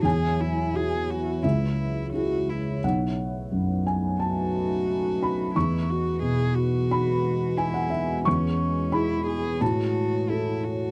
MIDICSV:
0, 0, Header, 1, 4, 480
1, 0, Start_track
1, 0, Key_signature, 4, "major"
1, 0, Tempo, 694444
1, 30, Time_signature, 4, 2, 24, 8
1, 2430, Tempo, 676437
1, 7677, End_track
2, 0, Start_track
2, 0, Title_t, "Felt piano"
2, 0, Program_c, 0, 0
2, 0, Control_c, 0, 64, 127
2, 19, Note_on_c, 0, 40, 57
2, 33, Note_on_c, 0, 80, 80
2, 42, Control_c, 0, 64, 0
2, 157, Control_c, 0, 64, 127
2, 508, Note_on_c, 0, 64, 42
2, 514, Note_on_c, 0, 66, 46
2, 958, Note_off_c, 0, 40, 0
2, 963, Note_off_c, 0, 64, 0
2, 965, Note_off_c, 0, 80, 0
2, 966, Note_off_c, 0, 66, 0
2, 991, Note_on_c, 0, 37, 51
2, 994, Note_on_c, 0, 76, 57
2, 1004, Control_c, 0, 64, 0
2, 1130, Control_c, 0, 64, 127
2, 1449, Note_off_c, 0, 76, 0
2, 1476, Note_on_c, 0, 64, 36
2, 1482, Note_on_c, 0, 68, 41
2, 1930, Note_off_c, 0, 37, 0
2, 1930, Note_off_c, 0, 64, 0
2, 1933, Note_off_c, 0, 68, 0
2, 1960, Note_on_c, 0, 35, 50
2, 1964, Note_on_c, 0, 78, 63
2, 1969, Control_c, 0, 64, 0
2, 2107, Control_c, 0, 64, 127
2, 2430, Note_on_c, 0, 42, 40
2, 2648, Note_off_c, 0, 78, 0
2, 2677, Note_on_c, 0, 80, 61
2, 2900, Note_off_c, 0, 80, 0
2, 2912, Note_on_c, 0, 81, 65
2, 3606, Note_off_c, 0, 81, 0
2, 3643, Note_on_c, 0, 83, 62
2, 3847, Note_off_c, 0, 35, 0
2, 3862, Note_off_c, 0, 83, 0
2, 3874, Note_off_c, 0, 42, 0
2, 3880, Note_on_c, 0, 85, 68
2, 3884, Note_on_c, 0, 40, 50
2, 3886, Control_c, 0, 64, 0
2, 4020, Control_c, 0, 64, 127
2, 4351, Note_on_c, 0, 47, 40
2, 4807, Note_off_c, 0, 85, 0
2, 4841, Note_on_c, 0, 83, 71
2, 5285, Note_off_c, 0, 83, 0
2, 5311, Note_on_c, 0, 80, 64
2, 5422, Note_off_c, 0, 80, 0
2, 5427, Note_on_c, 0, 78, 55
2, 5540, Note_on_c, 0, 76, 59
2, 5541, Note_off_c, 0, 78, 0
2, 5771, Note_off_c, 0, 40, 0
2, 5771, Note_off_c, 0, 76, 0
2, 5791, Note_on_c, 0, 85, 78
2, 5793, Note_off_c, 0, 47, 0
2, 5806, Control_c, 0, 64, 0
2, 5806, Note_on_c, 0, 40, 52
2, 5932, Control_c, 0, 64, 127
2, 6242, Note_off_c, 0, 85, 0
2, 6267, Note_on_c, 0, 83, 70
2, 6277, Note_on_c, 0, 64, 41
2, 6278, Note_on_c, 0, 68, 44
2, 6722, Note_off_c, 0, 83, 0
2, 6727, Note_off_c, 0, 64, 0
2, 6727, Note_off_c, 0, 68, 0
2, 6730, Note_off_c, 0, 40, 0
2, 6753, Note_on_c, 0, 81, 71
2, 6755, Note_on_c, 0, 45, 53
2, 6766, Control_c, 0, 64, 0
2, 6875, Control_c, 0, 64, 127
2, 7240, Note_on_c, 0, 66, 37
2, 7241, Note_on_c, 0, 69, 46
2, 7677, Note_off_c, 0, 45, 0
2, 7677, Note_off_c, 0, 66, 0
2, 7677, Note_off_c, 0, 69, 0
2, 7677, Note_off_c, 0, 81, 0
2, 7677, End_track
3, 0, Start_track
3, 0, Title_t, "Cello"
3, 0, Program_c, 1, 42
3, 35, Note_on_c, 1, 68, 64
3, 279, Note_on_c, 1, 64, 57
3, 289, Note_off_c, 1, 68, 0
3, 521, Note_on_c, 1, 68, 65
3, 531, Note_off_c, 1, 64, 0
3, 758, Note_on_c, 1, 66, 56
3, 769, Note_off_c, 1, 68, 0
3, 989, Note_on_c, 1, 64, 55
3, 999, Note_off_c, 1, 66, 0
3, 1426, Note_off_c, 1, 64, 0
3, 1476, Note_on_c, 1, 66, 59
3, 1723, Note_on_c, 1, 64, 48
3, 1733, Note_off_c, 1, 66, 0
3, 1960, Note_off_c, 1, 64, 0
3, 2922, Note_on_c, 1, 66, 63
3, 3850, Note_off_c, 1, 66, 0
3, 3875, Note_on_c, 1, 64, 51
3, 4121, Note_on_c, 1, 66, 49
3, 4132, Note_off_c, 1, 64, 0
3, 4352, Note_off_c, 1, 66, 0
3, 4356, Note_on_c, 1, 68, 56
3, 4584, Note_on_c, 1, 66, 60
3, 4594, Note_off_c, 1, 68, 0
3, 5309, Note_on_c, 1, 64, 59
3, 5319, Note_off_c, 1, 66, 0
3, 5791, Note_off_c, 1, 64, 0
3, 5795, Note_on_c, 1, 61, 52
3, 6279, Note_on_c, 1, 64, 57
3, 6290, Note_off_c, 1, 61, 0
3, 6509, Note_off_c, 1, 64, 0
3, 6513, Note_on_c, 1, 68, 58
3, 6756, Note_on_c, 1, 66, 60
3, 6766, Note_off_c, 1, 68, 0
3, 7241, Note_on_c, 1, 64, 54
3, 7251, Note_off_c, 1, 66, 0
3, 7485, Note_on_c, 1, 66, 63
3, 7495, Note_off_c, 1, 64, 0
3, 7677, Note_off_c, 1, 66, 0
3, 7677, End_track
4, 0, Start_track
4, 0, Title_t, "Ambient pad"
4, 0, Program_c, 2, 92
4, 0, Note_on_c, 2, 54, 67
4, 23, Note_on_c, 2, 64, 64
4, 28, Note_on_c, 2, 71, 59
4, 987, Note_on_c, 2, 56, 57
4, 990, Note_off_c, 2, 71, 0
4, 991, Note_off_c, 2, 54, 0
4, 992, Note_on_c, 2, 73, 53
4, 1926, Note_off_c, 2, 64, 0
4, 1946, Note_on_c, 2, 71, 55
4, 1950, Note_on_c, 2, 57, 58
4, 1952, Note_on_c, 2, 63, 54
4, 1955, Note_off_c, 2, 56, 0
4, 1958, Note_off_c, 2, 73, 0
4, 3870, Note_off_c, 2, 57, 0
4, 3870, Note_on_c, 2, 66, 52
4, 3871, Note_off_c, 2, 63, 0
4, 3874, Note_on_c, 2, 56, 53
4, 5788, Note_off_c, 2, 71, 0
4, 5792, Note_off_c, 2, 66, 0
4, 5794, Note_on_c, 2, 73, 57
4, 5800, Note_on_c, 2, 68, 54
4, 6753, Note_off_c, 2, 56, 0
4, 6753, Note_on_c, 2, 57, 48
4, 6756, Note_off_c, 2, 68, 0
4, 6758, Note_on_c, 2, 66, 54
4, 7677, Note_off_c, 2, 57, 0
4, 7677, Note_off_c, 2, 66, 0
4, 7677, Note_off_c, 2, 73, 0
4, 7677, End_track
0, 0, End_of_file